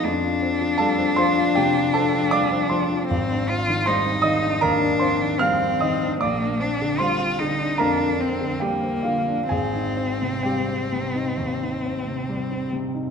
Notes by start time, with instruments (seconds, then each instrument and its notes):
0.04 grand piano F2, cello D4
0.24 grand piano F4
0.42 grand piano C4
0.61 grand piano F3
0.78 grand piano G3 A4 A5
0.99 grand piano C4
1.16 grand piano F3 C5 C6
1.38 grand piano F4
1.55 grand piano C3 G4 G5
1.76 grand piano F4
1.94 grand piano C4 A4 A5
2.14 grand piano F3
2.31 grand piano G3 D5 D6
2.52 grand piano C4
2.69 grand piano F3 C5 C6
2.91 grand piano F4
3.08 grand piano G#1, cello C4
3.31 grand piano D4
3.50 grand piano C4, cello F4
3.69 grand piano D#3
3.86 grand piano G3 C5 C6, cello D#4
4.06 grand piano C4
4.22 grand piano D#3 D#5 D#6
4.44 grand piano D4
4.61 grand piano D#2 A#4 A#5, cello D4
4.82 grand piano D4
4.99 grand piano C4 C5 C6
5.22 grand piano D#3
5.38 grand piano G3 F5 F6, cello C4
5.62 grand piano C4
5.81 grand piano D#3 D#5 D#6
6.03 grand piano D4
6.20 grand piano A#1 D5 D6, cello A#3
6.42 grand piano D4
6.60 grand piano C4, cello D4
6.82 grand piano D3
6.98 grand piano G3 C5 C6, cello F4
7.20 grand piano C4
7.39 grand piano D3, cello D#4
7.60 grand piano D4
7.78 grand piano F2 A#4 A#5, cello D4
7.99 grand piano D4
8.20 grand piano C4, cello C4
8.41 grand piano D3
8.60 grand piano G3 G4 G5, cello A#3
8.84 grand piano C4
9.03 grand piano D3 F4 F5
9.28 grand piano D4
9.49 grand piano G#1 G#4 G#5, cello C4
9.75 grand piano D#4
9.97 grand piano C4
10.22 grand piano C3
10.43 grand piano G3 G4 G5
10.68 grand piano C4
10.92 grand piano C3
11.15 grand piano D#4
11.37 grand piano D#2
11.62 grand piano D#4
11.86 grand piano C4
12.07 grand piano C3
12.29 grand piano G3
12.51 grand piano C4
12.73 grand piano C3
12.95 grand piano D#4